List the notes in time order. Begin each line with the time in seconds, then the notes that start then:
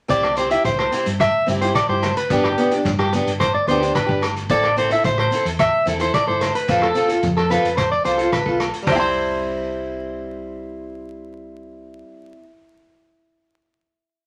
0.08 C2 C4 E4 G4 D5, kick, closed hi-hat, shekere
0.23 cross-stick, low agogo
0.36 C4 E4 G4 C5, closed hi-hat, shekere
0.51 E4 G4 E5, closed hi-hat
0.65 C2 C5, kick, closed hi-hat, muted conga, high conga, shekere
0.79 C5, cross-stick, low agogo
0.92 C4 E4 G4, closed hi-hat, shekere
1.06 G2, closed hi-hat, shekere
1.20 E5, kick, cross-stick, closed hi-hat, muted conga, low agogo, shekere
1.46 G2 C4 E4 G4, closed hi-hat, muted conga, high conga, shekere
1.61 E4 G4 C5, closed hi-hat, shekere
1.75 D5, kick, cross-stick, closed hi-hat, low agogo, shekere
1.89 G2 E4 G4 C5, shekere
2.03 cross-stick, closed hi-hat, high conga, low agogo, shekere
2.17 B4, closed hi-hat, shekere
2.30 G1 B3 D4 G4, kick, closed hi-hat, muted conga, shekere
2.44 G4, cross-stick, low agogo
2.58 B3 D4, muted steel-string acoustic guitar stroke, closed hi-hat
2.71 G4, closed hi-hat
2.75 D4
2.85 G2, kick, closed hi-hat, muted conga, high conga, low conga, shekere
2.99 G4, cross-stick, low agogo
3.13 B3 D4 G4, muted clean electric guitar stroke, closed hi-hat, high conga, shekere
3.26 G1, closed hi-hat, shekere
3.40 C5, kick, cross-stick, closed hi-hat, muted conga, low agogo, shekere
3.54 D5
3.67 D2 B3 D4 G4 C5, closed hi-hat, shekere
3.80 D4 G4, closed hi-hat, shekere
3.95 B4, kick, cross-stick, closed hi-hat, high conga, low agogo, shekere
4.07 G1 D4 G4, kick, shekere
4.22 cross-stick, closed hi-hat, low agogo, shekere
4.36 closed hi-hat, shekere
4.49 A1 C4 E4 A4 D5, kick, closed hi-hat, shekere
4.63 cross-stick, low agogo
4.76 C4 E4 A4 C5, closed hi-hat, shekere
4.90 E4 A4 E5, closed hi-hat
5.04 A1 C5, kick, closed hi-hat, muted conga, high conga, shekere
5.18 C5, cross-stick, low agogo
5.31 C4 E4 A4, closed hi-hat, shekere
5.45 E2, closed hi-hat, shekere
5.59 E5, kick, cross-stick, closed hi-hat, low agogo, shekere
5.85 E2 C4 E4 A4, closed hi-hat, muted conga, high conga, shekere
6.00 E4 A4 C5, closed hi-hat, shekere
6.14 D5, kick, cross-stick, closed hi-hat, low agogo, shekere
6.27 G1 E4 A4 C5, shekere
6.41 cross-stick, closed hi-hat, high conga, low agogo, shekere
6.55 B4, closed hi-hat, shekere
6.68 F1 C4 F4 A4, kick, closed hi-hat, shekere
6.82 A4, cross-stick, low agogo, shekere
6.94 C4 F4 A4, closed hi-hat, shekere
7.08 F4 A4, closed hi-hat, shekere
7.22 F2, kick, closed hi-hat, muted conga, high conga, low conga, shekere
7.37 A4, cross-stick, low agogo, shekere
7.49 C4 F4 A4 B4, closed hi-hat, high conga, shekere
7.64 F1, closed hi-hat, shekere
7.77 C5, kick, cross-stick, closed hi-hat, low agogo, shekere
7.92 D5, shekere
8.04 C2 C4 F4 A4 C5, closed hi-hat, muted conga, shekere
8.18 F4 A4, closed hi-hat, shekere
8.32 B4, kick, cross-stick, closed hi-hat, high conga, low agogo, shekere
8.46 B1 F4 A4, kick, shekere
8.60 cross-stick, closed hi-hat, low agogo, shekere
8.73 closed hi-hat, shekere
8.82 G3
8.87 C2 C4 C5, kick, floor tom, open hi-hat, muted conga, low agogo, shekere
8.92 E4 E5
8.96 G5 C6